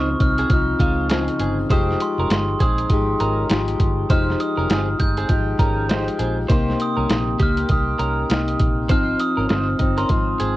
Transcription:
Already playing: C#2 C#3 F3 C4 D#4 C#6
0.20 C2 F3 C4 D#4 F6, kick, closed hi-hat
0.38 C4 G#4, closed hi-hat
0.50 C2 F3 C4 D#4 F6, kick, closed hi-hat
0.80 C#2 G#3 F4, kick, closed hi-hat
1.10 C#3 F3 C4 D#4 G#4, snare, closed hi-hat
1.28 closed hi-hat
1.40 G1 C4 G#4, closed hi-hat
1.70 F1 F3 G#3 D#4 G4 C5 D#6, kick, closed hi-hat
1.91 snare
2.00 C6, closed hi-hat
2.18 F1 C#4 A#4
2.30 G1 C6, snare, closed hi-hat
2.60 A#1 G#3 C4 D#4 G#4 D#6, kick, closed hi-hat
2.78 closed hi-hat
2.90 G#1 F3 G#3 D#4 G4, kick, closed hi-hat
3.20 G#1 C#4 A#4, closed hi-hat
3.49 G#1 F3 G#3 D#4 G4, snare, closed hi-hat
3.68 closed hi-hat
3.80 G1, kick, closed hi-hat
4.10 F1 F3 G#3 D#4 G4 C5 F6, kick, closed hi-hat
4.30 snare
4.40 D#6, closed hi-hat
4.57 F1 C#4 A#4
4.70 G1 C4 G#4 D#6, snare, closed hi-hat
4.99 G1 G#3 D#4 G4 G6, kick, closed hi-hat
5.17 C4 G#4, closed hi-hat
5.28 G#1 F3 G#3 D#4 G4, kick, closed hi-hat
5.59 G#1 C#4 A#4, kick, closed hi-hat
5.89 F3 G#3 D#4 G4 C5, snare, closed hi-hat
6.08 closed hi-hat
6.19 A#1 C4 G#4, closed hi-hat
6.48 C2 C3 A#3 D#4 G4 C5 C6, kick, closed hi-hat
6.70 snare
6.80 D#6, closed hi-hat
6.97 C2 C#4 A#4
7.09 A#1, snare, closed hi-hat
7.39 C#2 A#3 D#4 G4 F6, kick, closed hi-hat
7.57 closed hi-hat
7.69 C2 A#3 D#4 G4 D#6, kick, closed hi-hat
7.99 C2 C#4 A#4, closed hi-hat
8.29 C2 C3 A#3 D#4 G4, snare, closed hi-hat
8.48 closed hi-hat
8.59 A#1, kick, closed hi-hat
8.89 G#1 F3 C4 D#4 C5 F6, kick, closed hi-hat
9.19 D#6, closed hi-hat
9.37 G#1 C#4 A#4
9.49 G1 D#4 C5, snare, closed hi-hat
9.79 G1 F3 C4 D#4, kick, closed hi-hat
9.98 C#4 A#4 C6, closed hi-hat
10.09 G#1 G#2 F3 C4 D#4 C6, kick, closed hi-hat
10.40 G#1 C4 G#4, closed hi-hat

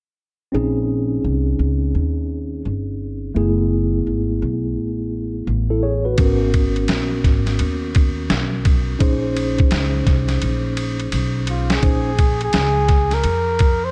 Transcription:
0.52 A#1 C4 C#4 D#4 G#4
1.24 C2
1.59 C#2
1.95 D#2
2.65 G1
3.35 F#1 A3 B3 E4 G#4
4.07 G#1
4.42 B1
4.77 A1
5.47 A1
5.70 E4 A4
5.83 G#4 C#5
6.05 F#4 B4
6.18 G#1 B3 C#4 F#4 A#4, kick, ride
6.54 kick, ride
6.76 ride
6.88 A#1, snare, hi-hat pedal, ride
7.24 G#1, kick, snare, ride
7.46 snare, ride
7.59 D#2, ride
7.95 kick, ride
8.30 B1, snare, hi-hat pedal, ride
8.65 kick, ride
8.99 A#1 C#4 D#4 G#4 C5, kick, ride
9.37 ride
9.58 kick, ride
9.71 C#2, snare, hi-hat pedal, ride
10.07 C2, kick, snare, ride
10.28 snare, ride
10.42 A#1, ride
10.77 ride
11.00 ride
11.12 B1, hi-hat pedal, ride
11.47 F4, ride
11.70 G#4, snare, ride
11.82 A#1 C#4 D#4 G#4 C5, kick, ride
12.19 kick, ride
12.41 G#4, ride
12.53 C#2, snare, hi-hat pedal, ride
12.88 kick, snare, ride
13.11 A#4, snare, ride
13.24 F2, ride
13.59 kick, ride
13.85 C5

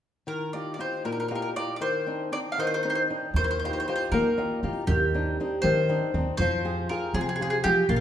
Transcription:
0.27 D#3 A#4
0.53 D#4 F4 G4 D5
0.74 D5
0.79 D#4 F4 G4 C5
1.05 A#2 A#4
1.12 A#4
1.20 A#4
1.28 D#4 F4 G4 A#4
1.35 A#4
1.42 A#4
1.56 D#4 F4 G4 D5
1.76 D5
1.81 D#3 C5
2.06 C4 D4 D#4
2.32 C4 D4 D#4 D5
2.52 F5
2.58 D#3 C5 D#5
2.67 C5
2.74 C5
2.83 C4 D#4 C5
2.90 C5
2.95 C5
3.10 C4 D4 D#4
3.34 D#2 D#3 C5
3.44 C5
3.51 C5
3.59 C5
3.64 D#4 F4 G4 C5
3.73 C5
3.80 C5
3.88 D#4 F4 G4 C5
3.96 C5
4.12 D#3 A#3 A#4
4.38 D#4 F4 G4
4.63 D#3 D#4 F4 G4
4.87 D#2 D#3 G4
5.14 C4 D4 D#4
5.40 C4 D4 D#4
5.62 D#3 C5
5.89 C4 D4 D#4
6.14 D#2 C4 D4 D#4
6.37 F2 F3 C5
6.65 F4 G4 G#4
6.89 F4 G4 G#4 A#4
7.14 C3 F3 G#4
7.21 G#4
7.29 G#4
7.36 G#4
7.41 F4 G4 G#4
7.50 G#4
7.64 F3 F4 G4 G#4
7.89 A#1 A#3 F4
7.96 F4

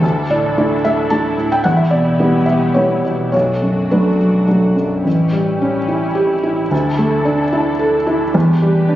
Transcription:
Already playing: A4
0.02 D2 D4 E4
0.30 A2 D5
0.57 A3 D4 E4
0.85 A3 E5
1.10 A3 D4 E4 A5
1.38 A2
1.52 G5
1.64 E1 E2 B3 G4 F#5
1.77 E5
1.91 B2 D5
2.19 G3 B3 E4
2.46 G3 E5
2.74 G3 B3 E4 C#5
3.05 B2
3.32 B1 A3 D4 F#4 C#5
3.62 F#2
3.91 F#3 A3 D4 B4
4.20 F#3
4.47 F#3 A3 D4
4.76 F#2
5.05 A1 C#4 E4 G4
5.32 G3
5.62 C#4
5.88 E4
6.15 G4
6.43 E4
6.71 D2 D4 A4
6.98 A3
7.25 D4
7.53 E4
7.79 A4
8.07 E4
8.34 E1 E2 G4 B4
8.62 G3
8.89 D4

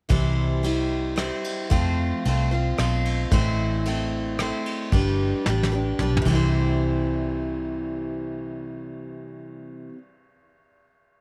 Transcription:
0.09 C2 C3 E3 G3 C4 E4 C5, kick, ride
0.63 G3 C4 E4 C5, ride
1.16 G3 C4 E4 C5, cross-stick, ride
1.44 ride
1.70 F2 F3 A3 C4 F4 C5, kick, ride
2.25 C2 A3 C4 F4 C5, ride
2.51 C4 F4 C5
2.78 B1 A3 C4 F4 C5, cross-stick, ride
3.05 ride
3.31 A1 A2 E3 A3 C4 E4 C5, kick, ride
3.85 A3 C4 E4, ride
3.90 C5
4.39 A3 C4 E4 C5, cross-stick, ride
4.66 ride
4.92 G1 G3 D4 G4 B4, kick, ride
5.46 A1 G3 D4 G4 B4, snare
5.63 snare
5.72 D4 G4 B4
5.99 B1 G3 D4 G4 B4, mid tom
6.17 mid tom
6.22 C3 E3
6.26 C2 G3, kick, ride
6.30 C4 E4
6.35 C5

